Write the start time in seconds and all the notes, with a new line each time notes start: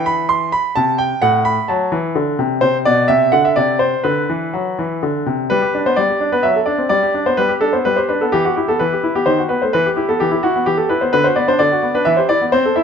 Already playing: E3
0.06 B5
0.29 C6
0.52 B5
0.75 C3 A5
0.98 G5
1.22 A2 F#5
1.45 B5
1.68 F#3 A5
1.92 E3
2.15 D3
2.39 C3
2.61 C3 C5
2.85 B2 D5
3.08 C3 E5
3.32 D3 F#5
3.45 E5
3.56 C3 D5
3.79 C5
4.04 D3 B4
4.30 E3
4.53 F#3
4.79 E3
5.03 D3
5.26 C3
5.50 G3 B4
5.62 G4
5.74 D4
5.86 B3 C5
5.96 G3 D5
6.09 G4
6.20 D4
6.32 B3 B4
6.43 F#3 E5
6.56 A4
6.66 D4 D5
6.78 C4
6.89 G3 D5
7.03 G4
7.14 D4
7.26 B3 C5
7.37 G3 B4
7.49 G4
7.61 D4 A4
7.73 B3 C5
7.85 G3 B4
7.96 G4 C5
8.08 D4 B4
8.21 B3 A4
8.32 E3 G4
8.45 F#4 G4
8.56 E4 G4
8.68 B3 A4
8.79 E3 B4
8.93 G4
9.04 E4
9.15 B3 G4
9.26 D#3 C5
9.38 F#4
9.49 B3 B4
9.62 A3 C5
9.73 E3 B4
9.86 G4
9.96 E4 G4
10.09 B3 A4
10.20 E3 G4
10.31 E4 G4
10.43 E4 F#4
10.56 B3
10.66 E3 G4
10.77 G4 A4
10.89 E4 B4
11.01 B3 C5
11.13 D3 B4
11.24 F#4 C5
11.36 B3 D5
11.48 D4 C5
11.59 D3 D5
11.72 F#4
11.83 B3
11.95 D4 B4
12.05 E3 E5
12.17 G4 C5
12.29 E4 D5
12.41 B3
12.52 C4 C5
12.66 A4
12.76 E4 E5